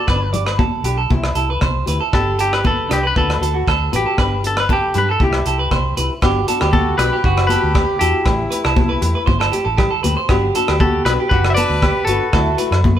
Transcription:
Already playing: D5
0.07 G1 B3 D4 G4 B4, kick, cross-stick, low agogo
0.33 D4 G4 D5, closed hi-hat, low conga
0.46 B4, cross-stick, low agogo
0.58 A4, kick, high conga
0.84 B1 D4 G4, closed hi-hat, low agogo
0.98 A4
1.10 C2 E3 C4 E4 G4, muted clean electric guitar stroke, kick, muted conga, high conga
1.24 cross-stick, low agogo
1.35 C2 C4 E4 G4 A4, closed hi-hat, muted conga
1.50 B4
1.61 C2 C5, kick, cross-stick, high conga, low agogo
1.86 D2 C4 E4 G4 B4, closed hi-hat, muted conga
2.00 A4
2.12 G1 B3 D4 G4 A4, kick, cross-stick, muted conga, low agogo
2.39 D4 G4 A4, closed hi-hat
2.53 G4 B4, cross-stick, low agogo
2.64 A4 B4, kick, high conga
2.89 C2 D4 G4, cross-stick, closed hi-hat, low agogo
3.03 B4
3.16 D2 A3 D4 F#4 A4 B4, kick, muted conga, high conga
3.30 cross-stick, low agogo
3.41 D2 F#4 A4, closed hi-hat, muted conga
3.54 F#4
3.67 D2 A4, kick, cross-stick, low agogo
3.92 A1 D4 F#4 G4 B4, closed hi-hat, muted conga, high conga
4.06 A4
4.17 G1 B3 D4 G4 B4, kick, cross-stick, muted conga, low agogo
4.43 D4 G4 A4, closed hi-hat
4.57 B4, cross-stick, low agogo
4.69 G4 A4, kick, high conga
4.94 G2 D4 G4, closed hi-hat, low conga, low agogo
4.98 B4
5.09 A4
5.20 C2 G3 C4 E4 G4, kick, muted conga, high conga
5.33 cross-stick, low agogo
5.46 C2 C4 E4 G4 A4, closed hi-hat, muted conga
5.59 B4
5.71 C2 C5, kick, cross-stick, high conga, low agogo
5.97 C2 C4 E4 G4 B4, closed hi-hat, muted conga
6.21 G1 F#3 B3 D4 F#4 G4, kick, cross-stick, muted conga, low agogo
6.47 B3 D4 F#4 A4, closed hi-hat
6.61 D2 G4, cross-stick, low agogo
6.73 F#4 G4 A4, kick, high conga
6.98 B1 B3 D4 F#4 G4 B4, cross-stick, closed hi-hat, muted conga, low agogo
7.13 G4
7.24 F#1 F#4, kick, muted conga
7.37 cross-stick, low agogo
7.47 F#4 G4 A4 B4, muted nylon-string guitar stroke, closed hi-hat, muted conga, high conga
7.51 B3
7.63 D2
7.74 G4, kick, cross-stick, high conga, low agogo
7.99 E2 D4 E4 F#4 G4 A4, closed hi-hat
8.03 B3
8.25 A1 E3 A3 C4 G4, muted clean electric guitar stroke, kick, cross-stick, muted conga, low agogo
8.50 A3 C4 G4 B4, closed hi-hat
8.64 C2 A4, cross-stick, low agogo
8.76 kick, high conga
8.89 B4
9.01 E2 A3 C4 G4, closed hi-hat, muted conga, low agogo
9.15 B4
9.26 G1 C5, kick, muted conga, high conga
9.40 A4, cross-stick, low agogo
9.52 A3 C4 G4, muted nylon-string guitar stroke, closed hi-hat, muted conga
9.65 A1 A4
9.78 G4, kick, cross-stick, low conga, low agogo
9.91 A4
10.03 D2 A3 C4 G4 B4, closed hi-hat, high conga
10.17 C5
10.29 G1 F#3 B3 D4 F#4 G4, kick, cross-stick, muted conga, low agogo
10.55 B3 D4 F#4 A4, closed hi-hat
10.68 D2 G4, cross-stick, low agogo
10.80 F#4 G4 A4, kick, high conga
11.05 B1 B3 D4 F#4 G4 B4, cross-stick, closed hi-hat, low agogo
11.20 G4
11.29 F#1 F#4 G4 B4, kick, muted conga
11.45 cross-stick, low agogo
11.50 C5 E5
11.54 D4 F#4 A4 B4 D5, closed hi-hat, muted conga, high conga
11.59 B3
11.69 D2
11.82 G4, kick, cross-stick, high conga, low agogo
12.05 G1 F#4 A4, closed hi-hat
12.09 B3 D4 B4
12.32 D2 F#3 A3 E4 F#4 A4, kick, cross-stick, muted conga, low agogo
12.57 A3 E4 F#4 B4, closed hi-hat
12.71 F#2, muted clean electric guitar stroke, cross-stick, low agogo
12.84 kick, high conga

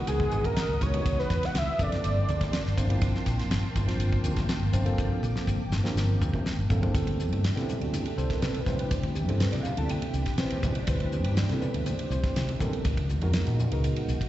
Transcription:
Already playing: E3 G#3 B3 D#4 F#4 D#5 F#5 D#6
0.07 C#2 G#4, hi-hat pedal, ride
0.20 kick
0.31 G#1, hi-hat pedal, ride, high conga
0.44 A#4, kick, ride, low conga
0.56 snare, hi-hat pedal, ride
0.69 C#2
0.80 C#2 E3 G#3 B3 D#4 F#4 C#5, kick, hi-hat pedal, ride, low conga
0.93 E3 G#3 B3 D#4 F#4, ride, high conga
1.06 C#2, kick, hi-hat pedal, ride
1.19 B4, snare
1.30 E2, kick, snare, hi-hat pedal, ride
1.43 F#5, snare, ride
1.55 C#2 E5, snare, hi-hat pedal, ride
1.68 muted fretless electric bass stroke
1.79 G1 F3 A#3 C4 D4 A4 D5 G5 A5 C6, kick, hi-hat pedal, ride, high conga, low conga
1.92 snare, ride, high conga
2.04 G1, hi-hat pedal, ride
2.29 D2, hi-hat pedal, ride, high conga
2.41 kick, snare, ride, low conga
2.53 snare, hi-hat pedal, ride
2.66 G1, snare
2.76 G1 F3 A#3 C4 D4 C5, kick, hi-hat pedal, ride, low conga
2.89 F3 A#3 C4 D4 E4, ride, high conga
3.01 G1, kick, hi-hat pedal, ride
3.15 snare
3.26 A#1, kick, snare, hi-hat pedal, ride
3.39 snare, ride
3.49 G1, snare, hi-hat pedal, ride
3.63 muted fretless electric bass stroke
3.75 G1, kick, hi-hat pedal, ride, high conga, low conga
3.87 F3 A#3 C4 D4 F4, snare, ride, high conga
3.98 G1, hi-hat pedal, ride
4.12 kick
4.24 D2, hi-hat pedal, ride, high conga
4.36 kick, snare, ride, low conga
4.49 snare, hi-hat pedal, ride
4.60 G1
4.72 G1 F3 A#3 C4 D4 C5 D6, kick, hi-hat pedal, ride, low conga
4.85 F3 A#3 C4 D4 A4, ride, high conga
4.98 G1, kick, hi-hat pedal
5.12 high conga
5.22 A#1, hi-hat pedal, high tom
5.36 snare
5.47 G1, kick, hi-hat pedal
5.59 muted fretless electric bass stroke
5.70 G1, snare, hi-hat pedal, high conga
5.84 F3 A#3 C4 D4 A#4, snare, high conga
5.95 G1, snare, hi-hat pedal
6.20 D2, hi-hat pedal, mid tom, high conga
6.34 kick, low conga
6.46 snare, hi-hat pedal
6.57 G1
6.69 G1 F3 A#3 C4 D4 A4, kick, hi-hat pedal, low conga
6.82 F3 A#3 C4 D4 A4, floor tom, high conga
6.94 D2 C3 E3 G3 B3 C4 D4 E4 G4 A4, kick, hi-hat pedal, ride
7.07 kick, ride
7.20 hi-hat pedal, high conga
7.31 G2, ride, high conga
7.44 snare, hi-hat pedal, ride
7.55 C3 G3 B3 C4 E4 A4, snare, ride, high conga
7.69 hi-hat pedal, low conga
7.81 D2 F#4, ride
7.93 G4, hi-hat pedal, ride, high conga
8.05 A4, ride
8.16 C2 G3 B3 C4 E4 A4 C5, hi-hat pedal
8.30 A#4, muted fretless electric bass stroke, kick, snare, ride
8.42 C3 B4, snare, hi-hat pedal, ride
8.52 A4, ride, high conga
8.61 B4
8.66 D2 G3 C4 E4 B4 C5, kick, snare, hi-hat pedal, low conga
8.79 B4, muted fretless electric bass stroke, ride
8.91 D2 C5, kick, hi-hat pedal, ride
9.03 E4, kick, ride
9.15 G4, hi-hat pedal, high conga
9.27 G2 G3 B3 C4 E4 A4 C5, ride, high conga
9.40 B4, snare, hi-hat pedal, ride
9.52 C3 D5, snare, ride, high conga
9.63 F5, hi-hat pedal, low conga
9.76 D2 G3 B3 C4 E4 A4 A5, ride
9.89 G5, hi-hat pedal, ride, high conga
10.02 ride
10.13 C2, hi-hat pedal
10.26 muted fretless electric bass stroke, kick, snare, ride
10.38 C3 G3 C4 E4 B4 C5, snare, hi-hat pedal, ride
10.50 ride, high conga
10.63 D2, kick, hi-hat pedal, low conga
10.75 muted fretless electric bass stroke, ride
10.87 D2 G3 C4 E4 B4 C5, kick, hi-hat pedal, ride
11.00 kick, ride
11.12 hi-hat pedal, high conga
11.24 G2, ride, high conga
11.37 D5, snare, hi-hat pedal, ride
11.49 C3 G3 B3 C4 E4 A4, snare, ride, high conga
11.60 B4, hi-hat pedal, low conga
11.74 D2, ride
11.86 C5, hi-hat pedal, ride, high conga
11.99 ride
12.10 C2 G3 A3 C4 E4 C5, hi-hat pedal
12.24 muted fretless electric bass stroke, kick, snare, ride
12.36 C3, snare, hi-hat pedal, ride
12.49 ride, high conga
12.59 D2 G3 B3 C4 E4 A4 A#4, kick, hi-hat pedal, low conga
12.73 muted fretless electric bass stroke, ride
12.84 C#2 C#3 D#4 F#4, kick, hi-hat pedal, ride
12.97 kick, ride
13.09 hi-hat pedal, high conga
13.21 F2 G#3 B3 D#4 F#4 A#4, ride, high conga, low conga
13.33 snare, hi-hat pedal, ride
13.47 A#2, ride, high conga
13.59 hi-hat pedal, low conga
13.72 C#2 G#3 B3 D#4 F#4 A#4, ride
13.84 hi-hat pedal, ride
13.96 ride
14.08 B1, hi-hat pedal
14.21 kick, ride

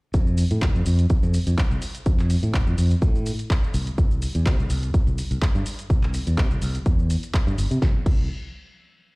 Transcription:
0.14 F2, kick, closed hi-hat, shaker
0.27 shaker
0.38 open hi-hat, shaker
0.51 A2, closed hi-hat, shaker
0.62 F1, kick, clap, closed hi-hat, shaker
0.75 F2, shaker
0.86 F2, open hi-hat, shaker
0.99 closed hi-hat, shaker
1.10 muted fingered electric bass stroke, kick, closed hi-hat, shaker
1.23 F2, shaker
1.34 open hi-hat, shaker
1.47 F2, closed hi-hat, shaker
1.58 kick, clap, closed hi-hat, shaker
1.71 C2, shaker
1.82 open hi-hat, shaker
1.95 closed hi-hat, shaker
2.06 F2, kick, closed hi-hat, shaker
2.19 clap, shaker
2.30 open hi-hat, shaker
2.43 A2, closed hi-hat, shaker
2.54 F1, kick, clap, closed hi-hat, shaker
2.67 F2, shaker
2.78 F2, open hi-hat, shaker
2.91 closed hi-hat, shaker
3.02 A2, kick, closed hi-hat, shaker
3.15 shaker
3.26 open hi-hat, shaker
3.39 closed hi-hat, shaker
3.50 kick, clap, closed hi-hat, shaker
3.64 shaker
3.74 C2, open hi-hat, shaker
3.87 closed hi-hat, shaker
3.98 C2, kick, closed hi-hat, shaker
4.11 shaker
4.22 open hi-hat, shaker
4.35 E2, closed hi-hat, shaker
4.46 C3, kick, clap, closed hi-hat, shaker
4.59 C2, shaker
4.70 C2, open hi-hat, shaker
4.83 closed hi-hat, shaker
4.94 muted fingered electric bass stroke, kick, closed hi-hat, shaker
5.07 C2, shaker
5.18 open hi-hat, shaker
5.31 C2, closed hi-hat, shaker
5.42 kick, clap, closed hi-hat, shaker
5.55 G2, shaker
5.66 open hi-hat, shaker
5.79 closed hi-hat, shaker
5.90 C2, kick, closed hi-hat, shaker
6.03 clap, shaker
6.14 open hi-hat, shaker
6.27 E2, closed hi-hat, shaker
6.38 C3, kick, clap, closed hi-hat, shaker
6.51 C2, shaker
6.62 C2, open hi-hat, shaker
6.75 closed hi-hat, shaker
6.86 E2, kick, closed hi-hat, shaker
6.99 shaker
7.10 open hi-hat, shaker
7.23 closed hi-hat, shaker
7.34 kick, clap, closed hi-hat, shaker
7.47 G2, shaker
7.58 G1, open hi-hat, shaker
7.71 C3, closed hi-hat, shaker
7.82 C2, kick, snare
8.06 C2, kick, crash

